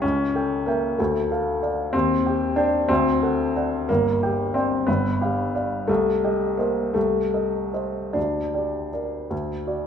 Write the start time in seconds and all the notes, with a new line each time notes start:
0.02 C#2 C#4
0.35 A4 G5
0.66 A#3 E5 G5
0.98 D2 A3
1.31 A4 F5
1.63 D5 F5
1.93 D#2 C4
2.26 G4 G5
2.56 D4 C5 G5
2.88 D2 C4
3.23 A4 F#5
3.56 D5 F#5
3.89 G1 A#3
4.23 G4 G5
4.54 C4 D5 G5
4.87 G1 B3
5.21 G4 F5
5.55 D5 F5
5.88 C2 A3
6.24 G4 D#5
6.57 A#3 C5 D#5
6.94 C2 A3
7.34 A4 D#5
7.74 C5 D#5
8.13 D2 D4
8.54 G4 D5
8.93 A#4 D5
9.30 D2
9.67 F#4 D5